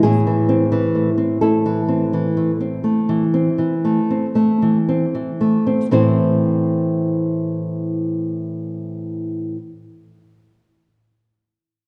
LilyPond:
\new Staff \with { instrumentName = "Nylon-string guitar" } { \time 12/8 \key a \minor \tempo 4. = 40 << { <e' gis'>4. <e' a'>1 r8 | <a, e c' e' a' c''>1. | } \\ { a,16 e16 c'16 e16 a16 c'16 a16 e16 c'16 e16 a16 c'16 a16 e16 c'16 e16 a16 c'16 a16 e16 c'16 e16 a16 c'16 | r1. | } >> }